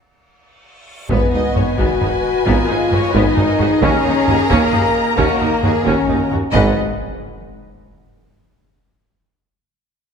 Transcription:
Already playing: reverse cymbal
1.09 double bass section G#1, tuba G#1, cello section G#2, viola section B3 B4, french horn section B3, violin section B4 D#5 G#5, taiko, sub drop
1.33 tuba G#1, double bass section G#1, cello section G#2, viola section D#4, violin section D#5
1.55 tuba G#1, double bass section G#1, cello section G#2, viola section F#4, violin section C#5, taiko low-mid
1.78 tuba G#1, double bass section G#1, cello section G#2, viola section B3, french horn section F#4, violin section B4, taiko
2.00 tuba G#1, double bass section G#1, cello section G#2, viola section D#4, taiko low-mid
2.45 tuba G#1, double bass section G#1, cello section G#2, viola section B3, french horn section F4, violin section A#4, taiko
2.67 tuba G#1, double bass section G#1, cello section G#2, viola section D#4, violin section G#4
2.90 tuba G#1, double bass section G#1, cello section G#2, viola section F#4, violin section C#5, taiko low-mid
3.13 tuba G#1, double bass section G#1, cello section G#2, viola section B3, french horn section D#4, violin section B4, taiko
3.36 tuba G#1, double bass section G#1, cello section G#2, viola section D#4, violin section A#4, taiko low-mid
3.59 tuba G#1, double bass section G#1, cello section G#2, viola section F#4, violin section G#4, taiko low-mid
3.81 double bass section D#2, tuba D#2, cello section D#2, french horn section C#4, viola section C#4 A#4, violin section A#5, taiko
4.04 double bass section D#2, tuba D#2, cello section D#2, viola section D#4
4.27 double bass section D#2, tuba D#2, cello section D#2, viola section F#4, taiko low-mid
4.49 double bass section D#2, tuba D#2, cello section D#2, french horn section A#3, viola section C#4, taiko
4.72 cello section D#2, double bass section D#2, tuba D#2, viola section D#4, taiko low-mid
5.17 cello section D#2, double bass section D#2, tuba D#2, french horn section A#3, viola section C#4, violin section F#4, taiko
5.40 cello section D#2, double bass section D#2, tuba D#2, viola section D#4, violin section A#4
5.63 tuba D#2, cello section D#2, double bass section D#2, viola section F#4, violin section G#4, taiko low-mid
5.85 double bass section D#2, tuba D#2, cello section D#2, french horn section C#4, viola section C#4, violin section F#4, taiko
6.08 double bass section D#2, tuba D#2, cello section D#2, viola section D#4, taiko low-mid
6.31 tuba D#2, cello section D#2, double bass section D#2, viola section F#4, taiko low-mid
6.52 tuba G#1, double bass section G#1, cello section G#2, french horn section G#3, viola section B4, violin section D#5 F#5, taiko, impact

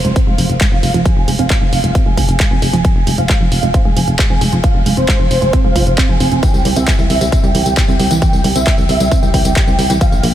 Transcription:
Already playing: supersaw synth C5
0.05 fm bass F1, synth arpeggio sound G#3, closed hi-hat
0.16 synth arpeggio sound C4, kick, closed hi-hat
0.27 fm bass F1, synth arpeggio sound G#3, supersaw synth F5
0.38 fm bass F1, synth arpeggio sound F3, open hi-hat
0.50 fm bass F1, closed hi-hat
0.61 synth arpeggio sound G#3, kick, clap, closed hi-hat
0.72 fm bass F1, synth arpeggio sound C4, supersaw synth F5
0.83 fm bass F1, synth arpeggio sound G#3, open hi-hat
0.94 fm bass F1, synth arpeggio sound F3, closed hi-hat
1.05 synth arpeggio sound F3, supersaw synth G#5, kick, closed hi-hat
1.17 fm bass F1
1.28 fm bass F1, synth arpeggio sound G#3, open hi-hat
1.39 fm bass F1, synth arpeggio sound C4, supersaw synth F5, closed hi-hat
1.50 synth arpeggio sound G#3, kick, clap, closed hi-hat
1.61 fm bass F1, synth arpeggio sound F3
1.73 fm bass F1, supersaw synth F5, open hi-hat
1.84 fm bass F1, synth arpeggio sound G#3, closed hi-hat
1.95 synth arpeggio sound C4, kick, closed hi-hat
2.06 fm bass F1, synth arpeggio sound G#3, supersaw synth G#5
2.17 fm bass F1, synth arpeggio sound F3, kick, open hi-hat
2.29 fm bass F1, closed hi-hat
2.40 synth arpeggio sound G#3, kick, clap, closed hi-hat
2.51 fm bass F1, synth arpeggio sound C4, supersaw synth G#5
2.62 fm bass F1, synth arpeggio sound G#3, open hi-hat
2.73 fm bass F1, synth arpeggio sound F3, closed hi-hat
2.85 supersaw synth G#5, kick, closed hi-hat
2.96 fm bass F1
3.07 fm bass F1, synth arpeggio sound G#3, open hi-hat
3.18 fm bass F1, synth arpeggio sound C4, supersaw synth F5, closed hi-hat
3.29 synth arpeggio sound G#3, kick, clap, closed hi-hat
3.41 fm bass F1, synth arpeggio sound F3
3.52 fm bass F1, supersaw synth F5, open hi-hat
3.63 fm bass F1, synth arpeggio sound G#3, closed hi-hat
3.74 synth arpeggio sound C4, kick, closed hi-hat
3.85 fm bass F1, synth arpeggio sound G#3, supersaw synth G#5
3.97 fm bass F1, synth arpeggio sound F3, open hi-hat
4.08 fm bass F1, closed hi-hat
4.19 synth arpeggio sound G#3, kick, clap, closed hi-hat
4.30 fm bass F1, synth arpeggio sound C4, supersaw synth G#5
4.41 fm bass F1, synth arpeggio sound G#3, open hi-hat
4.52 fm bass F1, synth arpeggio sound F3, closed hi-hat
4.64 synth arpeggio sound F3, supersaw synth F5, kick, closed hi-hat
4.75 fm bass F1
4.86 fm bass F1, synth arpeggio sound G#3, open hi-hat
4.97 fm bass F1, synth arpeggio sound C4, supersaw synth C5, closed hi-hat
5.08 synth arpeggio sound G#3, kick, clap, closed hi-hat
5.20 fm bass F1, synth arpeggio sound F3
5.31 fm bass F1, supersaw synth C5, open hi-hat
5.42 fm bass F1, synth arpeggio sound G#3, closed hi-hat
5.53 synth arpeggio sound C4, kick, closed hi-hat
5.64 fm bass F1, synth arpeggio sound G#3, supersaw synth F5
5.76 fm bass F1, synth arpeggio sound F4, kick, open hi-hat
5.87 fm bass F1, closed hi-hat
5.98 synth arpeggio sound C4, kick, clap, closed hi-hat
6.09 fm bass F1, synth arpeggio sound F3, supersaw synth G#5
6.20 fm bass F1, synth arpeggio sound C4, open hi-hat
6.32 fm bass F1, synth arpeggio sound C4, closed hi-hat
6.43 synth arpeggio sound E3, supersaw synth G5, kick, closed hi-hat, tambourine
6.54 fm bass C2, tambourine
6.65 fm bass C2, synth arpeggio sound G3, open hi-hat
6.76 fm bass C2, synth arpeggio sound C4, supersaw synth E5, closed hi-hat, tambourine
6.88 synth arpeggio sound G3, kick, clap, closed hi-hat, tambourine
6.99 fm bass C2, synth arpeggio sound E3, tambourine
7.10 fm bass C2, supersaw synth E5, open hi-hat
7.21 fm bass C2, synth arpeggio sound G3, closed hi-hat, tambourine
7.32 synth arpeggio sound C4, kick, closed hi-hat, tambourine
7.44 fm bass C2, synth arpeggio sound G3, supersaw synth G5, tambourine
7.55 fm bass C2, synth arpeggio sound E3, open hi-hat
7.66 fm bass C2, closed hi-hat, tambourine
7.77 synth arpeggio sound G3, kick, clap, closed hi-hat, tambourine
7.88 fm bass C2, synth arpeggio sound C4, supersaw synth G5, tambourine
8.00 fm bass C2, synth arpeggio sound G3, open hi-hat
8.11 fm bass C2, synth arpeggio sound E3, closed hi-hat, tambourine
8.22 synth arpeggio sound E3, supersaw synth G5, kick, closed hi-hat, tambourine
8.33 fm bass C2, tambourine
8.44 fm bass C2, synth arpeggio sound G3, open hi-hat
8.56 fm bass C2, synth arpeggio sound C4, supersaw synth E5, closed hi-hat, tambourine
8.67 synth arpeggio sound G3, kick, clap, closed hi-hat, tambourine
8.78 fm bass C2, synth arpeggio sound E3, tambourine
8.89 fm bass C2, supersaw synth E5, open hi-hat
9.00 fm bass C2, synth arpeggio sound G3, closed hi-hat, tambourine
9.12 synth arpeggio sound C4, kick, closed hi-hat, tambourine
9.23 fm bass C2, synth arpeggio sound G3, supersaw synth G5, tambourine
9.34 fm bass C2, synth arpeggio sound E3, kick, open hi-hat
9.45 fm bass C2, closed hi-hat, tambourine
9.56 synth arpeggio sound G3, kick, clap, closed hi-hat, tambourine
9.67 fm bass C2, synth arpeggio sound C4, supersaw synth G5, tambourine
9.79 fm bass C2, synth arpeggio sound G3, open hi-hat
9.90 fm bass C2, synth arpeggio sound E3, closed hi-hat, tambourine
10.01 synth arpeggio sound F3, supersaw synth F5, kick, closed hi-hat, tambourine
10.12 fm bass A#1, tambourine
10.23 fm bass A#1, synth arpeggio sound A#3, open hi-hat

